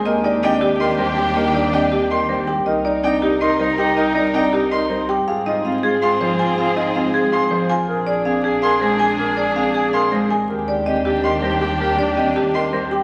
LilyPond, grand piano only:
\new Staff \with { instrumentName = "Grand piano" } { \time 7/8 \key ees \major \tempo 4 = 161 bes'8 ees'8 d'8 r8 bes'8 c''8 g'8 | bes'8 ees'8 d'8 r8 bes'8 c''8 g'8 | bes'8 ees'8 d'8 r8 bes'8 c''8 g'8 | bes'8 ees'8 d'8 r8 bes'8 c''8 g'8 |
aes'8 ees'8 r4 aes'8 c''8 f'8 | aes'8 ees'8 r4 aes'8 c''8 f'8 | bes'8 r4. bes'8 c''8 aes'8 | bes'8 r4. bes'8 c''8 aes'8 |
bes'8 r4. bes'8 c''8 g'8 | bes'8 r4. bes'8 c''8 g'8 | }